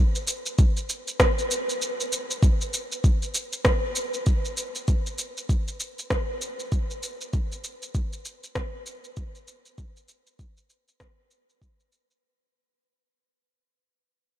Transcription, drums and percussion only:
0.15 shaker
0.28 shaker
0.46 shaker
0.59 kick, shaker
0.77 shaker
0.90 shaker
1.08 shaker
1.20 kick, cross-stick, shaker
1.39 shaker
1.51 shaker
1.70 shaker
1.82 shaker
2.00 shaker
2.12 shaker
2.31 shaker
2.43 kick, shaker
2.61 shaker
2.74 shaker
2.92 shaker
3.04 kick, shaker
3.23 shaker
3.35 shaker
3.53 shaker
3.65 kick, cross-stick, shaker
3.96 shaker
4.14 shaker
4.26 kick, shaker
4.45 shaker
4.57 shaker
4.75 shaker
4.88 kick, shaker
5.07 shaker
5.19 shaker
5.37 shaker
5.49 kick, shaker
5.68 shaker
5.80 shaker
5.99 shaker
6.10 kick, cross-stick, shaker
6.42 shaker
6.60 shaker
6.72 kick, shaker
6.91 shaker
7.03 shaker
7.21 shaker
7.33 kick, shaker
7.52 shaker
7.64 shaker
7.82 shaker
7.95 kick, shaker
8.13 shaker
8.25 shaker
8.44 shaker
8.55 kick, cross-stick, shaker
8.86 shaker
9.04 shaker
9.17 kick, shaker
9.35 shaker
9.48 shaker
9.66 shaker
9.78 kick, shaker
9.97 shaker
10.09 shaker
10.27 shaker
10.39 kick, shaker
10.57 shaker
10.70 shaker
10.88 shaker
11.00 kick, cross-stick, shaker
11.31 shaker
11.50 shaker
11.62 kick, shaker
11.80 shaker
11.92 shaker
12.11 shaker

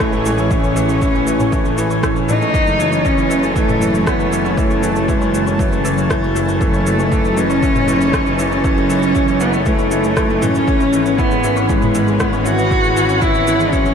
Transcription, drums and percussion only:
0.00 kick, cross-stick, shaker
0.13 shaker
0.26 shaker
0.38 shaker
0.51 kick, shaker
0.64 shaker
0.76 shaker
0.89 shaker
1.02 kick, shaker
1.15 shaker
1.27 shaker
1.40 mid tom, shaker
1.52 kick, shaker
1.65 shaker
1.78 shaker
1.91 shaker
2.03 kick, cross-stick, shaker
2.16 shaker
2.29 mid tom, shaker
2.42 shaker
2.54 kick, shaker
2.67 shaker
2.80 shaker
2.93 shaker
3.05 kick, shaker
3.18 shaker
3.31 shaker
3.43 shaker
3.56 kick, shaker
3.69 mid tom, shaker
3.82 shaker
3.95 shaker
4.07 kick, cross-stick, shaker
4.20 shaker
4.33 shaker
4.45 shaker
4.58 kick, shaker
4.71 shaker
4.83 shaker
4.96 shaker
5.08 kick, shaker
5.22 shaker
5.34 shaker
5.47 shaker
5.59 kick, shaker
5.73 shaker
5.85 shaker
5.98 shaker
6.10 kick, cross-stick, shaker
6.23 shaker
6.36 shaker
6.49 shaker
6.61 kick, shaker
6.74 shaker
6.86 shaker
6.99 shaker
7.12 kick, shaker
7.25 shaker
7.37 shaker
7.50 shaker
7.63 kick, shaker
7.76 mid tom, shaker
7.88 shaker
8.01 shaker
8.13 kick, cross-stick, shaker
8.26 shaker
8.39 shaker
8.52 shaker
8.64 kick, shaker
8.77 shaker
8.90 shaker
9.03 shaker
9.15 kick, shaker
9.28 shaker
9.40 shaker
9.53 shaker
9.66 kick, shaker
9.79 shaker
9.91 shaker
10.04 shaker
10.17 kick, cross-stick, shaker
10.30 shaker
10.42 mid tom, shaker
10.55 shaker
10.68 kick, shaker
10.80 shaker
10.93 shaker
11.06 shaker
11.19 kick, shaker
11.31 shaker
11.44 shaker
11.57 shaker
11.69 kick, shaker
11.82 mid tom, shaker
11.95 shaker
12.08 shaker
12.20 kick, cross-stick, shaker
12.33 shaker
12.46 shaker
12.58 shaker
12.71 kick, shaker
12.84 shaker
12.97 shaker
13.09 shaker
13.22 kick, shaker
13.35 shaker
13.47 shaker
13.60 shaker
13.73 kick, shaker
13.86 shaker

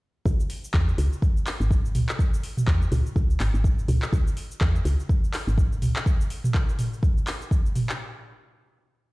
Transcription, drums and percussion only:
0.26 kick, cabasa
0.40 cabasa
0.50 open hi-hat, cabasa
0.64 cabasa
0.74 kick, clap, cabasa
0.89 cabasa
0.98 open hi-hat, cabasa
1.13 cabasa
1.22 kick, cabasa
1.37 cabasa
1.47 clap, open hi-hat, cabasa
1.61 cabasa
1.71 kick, cabasa
1.85 cabasa
1.95 mid tom, open hi-hat, cabasa
2.09 clap, cabasa
2.19 kick, cabasa
2.34 cabasa
2.43 open hi-hat, cabasa
2.57 mid tom, cabasa
2.67 kick, clap, cabasa
2.82 cabasa
2.92 mid tom, open hi-hat, cabasa
3.06 cabasa
3.16 kick, cabasa
3.30 cabasa
3.40 clap, open hi-hat, cabasa
3.55 cabasa
3.64 kick, cabasa
3.79 cabasa
3.88 mid tom, open hi-hat, cabasa
4.02 clap, cabasa
4.13 kick, cabasa
4.27 cabasa
4.37 open hi-hat, cabasa
4.51 cabasa
4.61 kick, clap, cabasa
4.76 cabasa
4.85 open hi-hat, cabasa
5.00 cabasa
5.09 kick, cabasa
5.24 cabasa
5.34 clap, open hi-hat, cabasa
5.48 cabasa
5.58 kick, cabasa
5.72 cabasa
5.82 mid tom, open hi-hat, cabasa
5.96 clap, cabasa
6.06 kick, cabasa
6.21 cabasa
6.30 open hi-hat, cabasa
6.44 mid tom, cabasa
6.54 kick, clap, cabasa
6.69 cabasa
6.79 mid tom, open hi-hat, cabasa
6.93 cabasa
7.03 kick, cabasa
7.18 cabasa
7.27 clap, open hi-hat, cabasa
7.42 cabasa
7.51 kick, cabasa
7.66 cabasa
7.75 mid tom, open hi-hat, cabasa
7.89 clap, cabasa

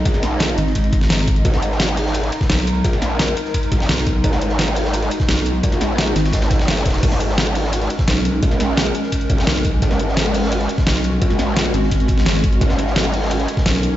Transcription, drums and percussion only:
0.05 kick, closed hi-hat, ride
0.14 snare
0.22 snare, closed hi-hat, ride
0.40 snare, closed hi-hat, ride
0.49 snare
0.58 closed hi-hat, ride
0.66 snare
0.75 kick, closed hi-hat, ride
0.84 closed hi-hat
0.92 kick, closed hi-hat, ride
1.01 snare
1.10 snare, closed hi-hat, ride
1.28 kick, closed hi-hat, ride
1.36 closed hi-hat
1.45 kick, closed hi-hat, ride
1.53 snare
1.62 closed hi-hat, ride
1.72 snare
1.80 snare, closed hi-hat, ride
1.89 snare
1.97 closed hi-hat, open hi-hat
2.06 snare
2.14 closed hi-hat, ride
2.23 closed hi-hat, ride
2.32 closed hi-hat, ride
2.41 kick, snare
2.49 snare, closed hi-hat, ride
2.67 closed hi-hat, ride
2.84 kick, closed hi-hat, ride
2.93 snare
3.02 snare, closed hi-hat, ride
3.19 snare, closed hi-hat, ride
3.28 snare
3.37 closed hi-hat, ride
3.45 snare
3.54 kick, closed hi-hat, ride
3.63 closed hi-hat
3.72 kick, closed hi-hat, ride
3.80 snare
3.89 snare, closed hi-hat, ride
4.07 kick, closed hi-hat, ride
4.24 kick, closed hi-hat, ride
4.33 snare
4.41 closed hi-hat, ride
4.49 snare
4.59 snare, closed hi-hat, ride
4.68 snare
4.76 closed hi-hat, open hi-hat
4.85 snare
4.93 closed hi-hat, ride
5.02 closed hi-hat, ride
5.11 closed hi-hat, ride
5.20 kick, snare
5.28 snare, closed hi-hat, ride
5.46 closed hi-hat, ride
5.63 kick, closed hi-hat, ride
5.72 snare, closed hi-hat
5.81 snare, closed hi-hat, ride
5.98 snare, closed hi-hat, ride
6.07 snare
6.16 snare, closed hi-hat, ride
6.25 snare, ride
6.32 kick, snare, closed hi-hat, ride
6.42 snare, closed hi-hat, ride
6.50 kick, snare, closed hi-hat, ride
6.59 snare
6.68 snare, closed hi-hat, ride
6.77 snare, closed hi-hat
6.86 kick, snare, closed hi-hat, ride
6.89 snare, ride
6.94 snare, closed hi-hat, ride
6.98 snare, ride
7.03 kick, closed hi-hat, crash, ride
7.12 snare
7.20 closed hi-hat, ride
7.30 snare
7.38 snare, closed hi-hat, ride
7.47 snare
7.55 closed hi-hat, open hi-hat
7.64 snare
7.73 closed hi-hat, ride
7.82 closed hi-hat, ride
7.90 closed hi-hat, ride
7.99 kick, snare
8.08 snare, closed hi-hat, ride
8.25 closed hi-hat, ride
8.43 kick, closed hi-hat, ride
8.51 snare
8.60 snare, closed hi-hat, ride
8.77 snare, closed hi-hat, ride
8.86 snare
8.95 closed hi-hat, ride
9.03 snare
9.12 kick, closed hi-hat, ride
9.21 closed hi-hat
9.30 kick, closed hi-hat, ride
9.38 snare
9.47 snare, closed hi-hat, ride
9.65 kick, closed hi-hat, ride
9.82 kick, closed hi-hat, ride
9.91 snare
9.99 closed hi-hat, ride
10.08 snare
10.17 snare, closed hi-hat, ride
10.26 snare
10.34 closed hi-hat, open hi-hat
10.43 snare
10.52 closed hi-hat, ride
10.61 closed hi-hat, ride
10.69 closed hi-hat, ride
10.78 kick, snare
10.86 snare, closed hi-hat, ride
11.04 closed hi-hat, ride
11.22 kick, closed hi-hat, ride
11.30 snare
11.39 snare, closed hi-hat, ride
11.56 snare, closed hi-hat, ride
11.65 snare
11.74 closed hi-hat, ride
11.83 snare
11.91 kick, closed hi-hat, ride
12.00 closed hi-hat
12.08 kick, closed hi-hat, ride
12.18 snare
12.26 snare, closed hi-hat, ride
12.44 kick, closed hi-hat, ride
12.53 closed hi-hat
12.61 kick, closed hi-hat, ride
12.70 snare
12.79 closed hi-hat, ride
12.87 snare
12.96 snare, closed hi-hat, ride
13.05 snare
13.14 closed hi-hat, open hi-hat
13.23 snare
13.31 closed hi-hat, ride
13.40 closed hi-hat, ride
13.48 closed hi-hat, ride
13.57 kick, snare
13.66 snare, closed hi-hat, ride
13.83 closed hi-hat, ride

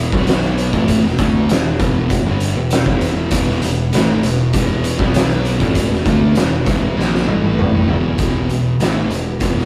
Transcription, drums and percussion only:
0.12 kick, snare
0.27 snare, closed hi-hat
0.43 closed hi-hat
0.58 closed hi-hat
0.73 kick, closed hi-hat
0.88 kick, closed hi-hat
1.06 snare
1.18 kick, closed hi-hat
1.49 snare, closed hi-hat
1.80 kick, closed hi-hat
2.10 kick, closed hi-hat
2.40 closed hi-hat
2.71 snare, closed hi-hat
2.86 kick
3.01 closed hi-hat
3.31 kick, closed hi-hat
3.49 snare
3.62 closed hi-hat
3.93 snare, closed hi-hat
4.23 closed hi-hat
4.53 kick, closed hi-hat
4.84 closed hi-hat
4.99 kick, snare
5.14 snare, closed hi-hat
5.30 closed hi-hat
5.45 closed hi-hat
5.60 kick, closed hi-hat
5.75 kick, closed hi-hat
5.93 snare
6.06 kick, closed hi-hat
6.35 snare, closed hi-hat
6.66 kick, closed hi-hat
6.99 snare
7.15 snare
7.28 high tom
7.43 high tom
7.58 mid tom
7.73 mid tom
7.88 floor tom
8.04 floor tom
8.18 kick, closed hi-hat
8.49 closed hi-hat
8.80 snare, closed hi-hat
9.10 closed hi-hat
9.40 kick, closed hi-hat
9.58 snare

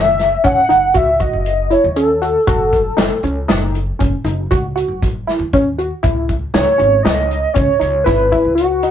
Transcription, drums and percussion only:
0.20 snare, closed hi-hat
0.44 kick, closed hi-hat
0.70 closed hi-hat
0.94 kick, closed hi-hat
1.20 kick, closed hi-hat
1.46 closed hi-hat
1.71 closed hi-hat
1.96 closed hi-hat
2.23 closed hi-hat
2.47 kick, closed hi-hat
2.73 kick, closed hi-hat
2.98 snare, closed hi-hat
3.24 closed hi-hat
3.49 snare, closed hi-hat
3.75 closed hi-hat
4.00 kick, closed hi-hat
4.26 closed hi-hat
4.51 kick, closed hi-hat
4.77 closed hi-hat
5.02 kick, closed hi-hat
5.29 snare, closed hi-hat
5.53 kick, closed hi-hat
5.79 closed hi-hat
6.04 kick, closed hi-hat
6.29 kick, closed hi-hat
6.54 snare, closed hi-hat
6.80 closed hi-hat
7.05 snare, closed hi-hat
7.31 closed hi-hat
7.55 kick, closed hi-hat
7.81 closed hi-hat
8.07 kick, snare, closed hi-hat
8.32 kick, closed hi-hat
8.58 closed hi-hat
8.83 closed hi-hat

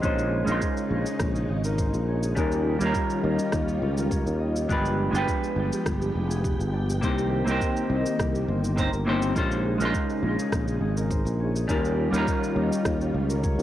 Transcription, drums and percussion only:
0.03 kick, cabasa
0.19 cabasa
0.47 cabasa
0.62 kick, cabasa
0.77 cabasa
1.06 cabasa
1.20 kick, cross-stick, cabasa
1.35 cabasa
1.64 cabasa
1.78 kick, cabasa
1.94 cabasa
2.23 cabasa
2.37 kick, cabasa
2.52 cabasa
2.81 cabasa
2.94 kick, cabasa
3.10 cabasa
3.39 cabasa
3.52 kick, cross-stick, cabasa
3.68 cabasa
3.97 cabasa
4.11 kick, cabasa
4.27 cabasa
4.56 cabasa
4.69 kick, cabasa
4.85 cabasa
5.15 cabasa
5.28 kick, cabasa
5.44 cabasa
5.73 cabasa
5.86 kick, cross-stick, cabasa
6.02 cabasa
6.31 cabasa
6.44 kick, cabasa
6.60 cabasa
6.90 cabasa
7.03 kick, cabasa
7.18 cabasa
7.47 cabasa
7.61 kick, cabasa
7.77 cabasa
8.06 cabasa
8.19 kick, cross-stick, cabasa
8.35 cabasa
8.64 cabasa
8.78 kick, cabasa
8.93 cabasa
9.22 cabasa
9.36 kick, cabasa
9.51 cabasa
9.80 cabasa
9.94 kick, cabasa
10.10 cabasa
10.39 cabasa
10.52 kick, cross-stick, cabasa
10.68 cabasa
10.97 cabasa
11.11 kick, cabasa
11.27 cabasa
11.56 cabasa
11.69 kick, cabasa
11.85 cabasa
12.14 cabasa
12.27 kick, cabasa
12.44 cabasa
12.72 cabasa
12.85 kick, cross-stick, cabasa
13.01 cabasa
13.30 cabasa
13.44 kick, cabasa
13.59 cabasa

